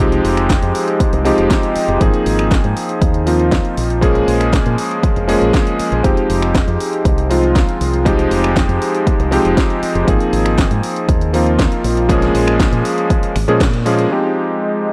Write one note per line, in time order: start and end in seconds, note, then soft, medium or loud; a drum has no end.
0.00 0.19 C2 medium
0.00 1.22 F3 medium
0.00 1.22 G#3 medium
0.00 1.22 C4 medium
0.00 1.23 D#4 medium
0.00 1.23 G4 loud
0.12 closed hi-hat soft
0.24 0.56 F1 medium
0.24 open hi-hat loud
0.37 finger snap medium
0.37 closed hi-hat soft
0.50 kick loud
0.50 snare loud
0.50 closed hi-hat medium
0.62 0.71 F2 loud
0.62 closed hi-hat soft
0.75 open hi-hat loud
0.88 closed hi-hat soft
1.00 kick loud
1.00 closed hi-hat medium
1.13 1.31 C2 loud
1.13 closed hi-hat soft
1.25 1.98 F3 medium
1.25 1.98 G#3 medium
1.25 1.98 C4 medium
1.25 1.98 D#4 medium
1.25 1.98 G4 loud
1.25 open hi-hat loud
1.38 1.47 F1 medium
1.38 closed hi-hat soft
1.50 kick loud
1.50 snare loud
1.50 closed hi-hat medium
1.63 closed hi-hat soft
1.76 muted fingered electric bass stroke soft
1.76 open hi-hat loud
1.88 1.97 F1 medium
1.88 closed hi-hat soft
2.00 2.10 G#1 medium
2.00 3.24 F3 medium
2.00 3.24 A#3 medium
2.00 3.24 C4 medium
2.00 3.24 D#4 medium
2.00 3.24 G#4 medium
2.00 kick loud
2.00 closed hi-hat medium
2.14 closed hi-hat soft
2.26 2.58 G#1 medium
2.26 open hi-hat loud
2.39 finger snap medium
2.39 closed hi-hat soft
2.51 kick loud
2.51 snare loud
2.51 closed hi-hat medium
2.64 2.73 G#2 loud
2.64 closed hi-hat soft
2.77 open hi-hat loud
2.89 closed hi-hat soft
3.02 3.59 D#2 medium
3.02 kick loud
3.02 closed hi-hat medium
3.14 closed hi-hat soft
3.26 3.99 F3 medium
3.26 3.99 A#3 medium
3.26 4.00 C4 medium
3.26 4.00 D#4 medium
3.26 4.00 F4 medium
3.26 open hi-hat loud
3.39 closed hi-hat soft
3.52 kick loud
3.52 snare loud
3.52 closed hi-hat medium
3.65 closed hi-hat soft
3.77 4.22 A#1 medium
3.77 open hi-hat loud
3.90 closed hi-hat soft
4.01 5.25 F3 medium
4.01 5.25 G#3 medium
4.01 5.25 A#3 medium
4.01 5.26 C#4 medium
4.01 5.26 G#4 loud
4.01 kick loud
4.01 closed hi-hat medium
4.15 closed hi-hat soft
4.28 4.60 A#1 medium
4.28 open hi-hat loud
4.41 finger snap medium
4.41 closed hi-hat soft
4.53 kick loud
4.53 snare loud
4.53 closed hi-hat medium
4.66 4.75 A#2 loud
4.66 closed hi-hat soft
4.78 open hi-hat loud
4.91 closed hi-hat soft
5.03 kick loud
5.03 closed hi-hat medium
5.16 5.34 F1 medium
5.16 closed hi-hat soft
5.28 6.01 F3 medium
5.28 6.01 G#3 medium
5.28 6.01 A#3 medium
5.28 6.02 C#4 medium
5.28 6.02 G#4 loud
5.28 open hi-hat loud
5.42 5.50 A#1 medium
5.42 closed hi-hat soft
5.54 kick loud
5.54 snare loud
5.54 closed hi-hat medium
5.67 closed hi-hat soft
5.79 muted fingered electric bass stroke soft
5.79 open hi-hat loud
5.92 6.01 A#1 medium
5.92 closed hi-hat soft
6.03 6.13 F1 medium
6.03 7.27 F3 medium
6.03 7.27 G#3 medium
6.03 7.27 C4 medium
6.03 7.28 D#4 medium
6.03 7.28 G4 medium
6.03 kick loud
6.03 closed hi-hat medium
6.17 closed hi-hat soft
6.30 6.61 F1 medium
6.30 open hi-hat loud
6.42 finger snap medium
6.42 closed hi-hat soft
6.55 kick loud
6.55 snare loud
6.55 closed hi-hat medium
6.68 6.76 F2 loud
6.68 closed hi-hat soft
6.80 open hi-hat loud
6.93 closed hi-hat soft
7.05 7.62 C2 medium
7.05 kick loud
7.05 closed hi-hat medium
7.18 closed hi-hat soft
7.29 8.02 F3 medium
7.29 8.03 G#3 medium
7.29 8.03 C4 medium
7.29 8.03 D#4 medium
7.29 8.03 F4 medium
7.29 open hi-hat loud
7.43 closed hi-hat soft
7.56 kick loud
7.56 snare loud
7.56 closed hi-hat medium
7.69 closed hi-hat soft
7.81 8.25 C2 medium
7.81 open hi-hat loud
7.94 closed hi-hat soft
8.05 9.29 F3 loud
8.05 9.29 G#3 medium
8.05 9.29 C4 medium
8.05 9.29 D#4 medium
8.05 9.30 G4 loud
8.05 kick loud
8.05 closed hi-hat medium
8.19 closed hi-hat soft
8.31 8.63 F1 medium
8.31 open hi-hat loud
8.44 finger snap medium
8.44 closed hi-hat soft
8.56 kick loud
8.56 snare loud
8.56 closed hi-hat medium
8.69 8.78 F2 loud
8.69 closed hi-hat soft
8.82 open hi-hat loud
8.95 closed hi-hat soft
9.07 kick loud
9.07 closed hi-hat medium
9.19 9.37 C2 loud
9.19 closed hi-hat soft
9.31 10.04 F3 medium
9.31 10.04 G#3 medium
9.31 10.05 C4 medium
9.31 10.05 D#4 medium
9.31 10.05 G4 loud
9.31 open hi-hat loud
9.45 9.54 F1 medium
9.45 closed hi-hat soft
9.57 kick loud
9.57 snare loud
9.57 closed hi-hat medium
9.70 closed hi-hat soft
9.83 muted fingered electric bass stroke soft
9.83 open hi-hat loud
9.95 10.04 F1 medium
9.95 closed hi-hat soft
10.07 10.17 G#1 medium
10.07 11.30 F3 medium
10.07 11.31 A#3 medium
10.07 11.31 C4 medium
10.07 11.31 D#4 medium
10.07 11.31 G#4 medium
10.07 kick loud
10.07 closed hi-hat medium
10.20 closed hi-hat soft
10.33 10.65 G#1 medium
10.33 open hi-hat loud
10.46 finger snap medium
10.46 closed hi-hat soft
10.58 kick loud
10.58 snare loud
10.58 closed hi-hat medium
10.71 10.80 G#2 loud
10.71 closed hi-hat soft
10.83 open hi-hat medium
10.96 closed hi-hat soft
11.09 11.66 D#2 medium
11.09 kick loud
11.09 closed hi-hat medium
11.21 closed hi-hat soft
11.33 12.06 F3 medium
11.33 12.06 A#3 medium
11.33 12.07 C4 medium
11.33 12.07 D#4 medium
11.33 12.07 F4 medium
11.33 open hi-hat loud
11.46 closed hi-hat soft
11.59 kick loud
11.59 snare loud
11.59 closed hi-hat medium
11.72 closed hi-hat soft
11.84 12.29 A#1 medium
11.84 open hi-hat loud
11.97 closed hi-hat soft
12.09 13.32 F3 loud
12.09 13.32 G#3 medium
12.09 13.33 A#3 medium
12.09 13.33 C#4 medium
12.09 13.33 G#4 loud
12.09 kick loud
12.09 closed hi-hat medium
12.22 snare soft
12.22 closed hi-hat soft
12.35 12.66 A#1 medium
12.35 open hi-hat loud
12.48 finger snap medium
12.48 closed hi-hat soft
12.60 kick loud
12.60 snare loud
12.60 closed hi-hat medium
12.72 12.81 A#2 loud
12.72 closed hi-hat soft
12.85 open hi-hat loud
12.98 closed hi-hat soft
13.10 kick loud
13.10 closed hi-hat medium
13.23 muted fingered electric bass stroke soft
13.23 closed hi-hat soft
13.36 13.44 G#1 loud
13.36 finger snap medium
13.36 open hi-hat loud
13.48 14.05 A#2 medium
13.48 13.59 F3 medium
13.48 13.59 G#3 medium
13.48 13.59 A#3 medium
13.48 13.59 C#4 medium
13.48 13.59 G#4 medium
13.48 closed hi-hat soft
13.61 kick loud
13.61 snare loud
13.61 closed hi-hat medium
13.74 closed hi-hat soft
13.85 14.08 F3 medium
13.85 14.08 G#3 medium
13.85 14.08 A#3 medium
13.85 14.08 C#4 medium
13.85 14.08 G#4 medium
13.85 open hi-hat loud
13.99 closed hi-hat soft
14.10 14.93 F3 medium
14.10 14.93 G#3 medium
14.10 14.93 C4 medium
14.10 14.93 D#4 medium
14.10 14.93 F4 medium
14.10 14.93 G4 medium
14.10 14.93 D#5 medium